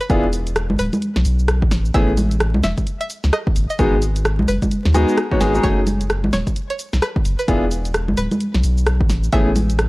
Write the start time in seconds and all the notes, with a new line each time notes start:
0.01 B4, cabasa
0.10 E1 B3 D4 E4 F4 G#4, kick, closed hi-hat, cabasa
0.33 open hi-hat, cabasa
0.47 closed hi-hat, cabasa
0.56 cross-stick, closed hi-hat, cabasa
0.70 G#1, high conga
0.79 D1 B4, open hi-hat, cabasa
0.93 closed hi-hat, high conga, cabasa
1.02 closed hi-hat, cabasa
1.16 B1, snare, closed hi-hat
1.25 B1, open hi-hat, cabasa
1.39 cabasa
1.48 cross-stick, closed hi-hat, cabasa
1.62 A1, kick
1.71 snare, open hi-hat, cabasa
1.85 cabasa
1.94 A1 A3 B3 C#4 E4 G#4 E5, kick, closed hi-hat, cabasa
2.17 open hi-hat, high conga, cabasa
2.31 closed hi-hat, cabasa
2.40 cross-stick, closed hi-hat, cabasa
2.54 C#2, high conga
2.64 E1 E5, snare, open hi-hat, cabasa
2.78 kick, closed hi-hat, cabasa
2.87 closed hi-hat, cabasa
3.01 E5, closed hi-hat
3.10 open hi-hat, cabasa
3.24 C#2, snare, cabasa
3.33 D#5, cross-stick, closed hi-hat, cabasa
3.47 kick
3.56 G#1, open hi-hat, cabasa
3.70 D#5, cabasa
3.79 G#1 G#3 B3 D#4 F#4 G#4, kick, closed hi-hat, cabasa
4.02 open hi-hat, cabasa
4.16 closed hi-hat, cabasa
4.25 cross-stick, closed hi-hat, cabasa
4.39 B1, high conga
4.48 F#1 B4, open hi-hat, cabasa
4.62 kick, closed hi-hat, high conga, cabasa
4.71 closed hi-hat, cabasa
4.85 D#2, snare, closed hi-hat
4.94 D#2 G#3 B3 D#4 F#4 G#4, open hi-hat, cabasa
5.08 cabasa
5.17 cross-stick, closed hi-hat, cabasa
5.31 G#3 B3 D#4 F#4 C#5, kick
5.41 G#1 G#3 B3 D#4 F#4 G#4, snare, open hi-hat, cabasa
5.54 G#3 B3 D#4 F#4 G#4, cabasa
5.63 F#1 A3 C#4 D#4 F#4 G#4 C#5, kick, closed hi-hat, cabasa
5.87 open hi-hat, high conga, cabasa
6.01 closed hi-hat, cabasa
6.10 cross-stick, closed hi-hat, cabasa
6.24 A1, high conga
6.33 D#1 C#5, snare, open hi-hat, cabasa
6.47 kick, closed hi-hat, cabasa
6.56 closed hi-hat, cabasa
6.70 C#5, closed hi-hat
6.79 open hi-hat, cabasa
6.93 B1, snare, cabasa
7.02 B4, cross-stick, closed hi-hat, cabasa
7.16 kick
7.25 F#1, open hi-hat, cabasa
7.39 B4, cabasa
7.48 E1 B3 D4 E4 F4 G#4, kick, closed hi-hat, cabasa
7.71 open hi-hat, cabasa
7.85 closed hi-hat, cabasa
7.94 cross-stick, closed hi-hat, cabasa
8.08 G#1, high conga
8.17 D1 B4, open hi-hat, cabasa
8.31 closed hi-hat, high conga, cabasa
8.40 closed hi-hat, cabasa
8.54 B1, snare, closed hi-hat
8.63 B1, open hi-hat, cabasa
8.77 cabasa
8.86 cross-stick, closed hi-hat, cabasa
9.01 A1, kick
9.10 snare, open hi-hat, cabasa
9.24 cabasa
9.33 A1 A3 B3 C#4 E4 G#4 E5, kick, closed hi-hat, cabasa
9.56 open hi-hat, high conga, cabasa
9.70 closed hi-hat, cabasa
9.79 cross-stick, closed hi-hat, cabasa